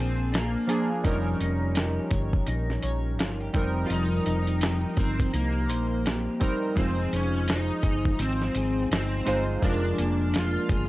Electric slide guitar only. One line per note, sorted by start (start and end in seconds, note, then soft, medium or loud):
0.00 0.36 C4 medium
0.36 0.88 A#3 medium
3.86 3.91 F4 medium
3.92 5.02 D#4 loud
4.98 5.34 C4 medium
5.35 6.37 A#3 medium
6.79 7.14 C4 medium
7.15 7.51 C#4 medium
7.49 8.22 D#4 medium
8.21 8.91 C4 medium
8.92 9.45 C4 medium
9.64 10.37 D4 medium
10.36 10.89 F4 loud